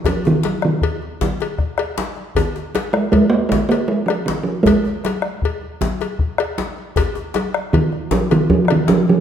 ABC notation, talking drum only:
X:1
M:12/8
L:1/16
Q:3/8=104
K:Ebmix
V:1 name="Talking drum" clef=bass
F,2 E,4 E,8 z8 z2 | z6 A,2 A,2 B,2 A,2 B,2 A,2 F,2 E,2 F,2 | A,8 z16 | z8 E,4 F,2 E,2 F,3/2 F,/2 E,2 F,2 F,2 |]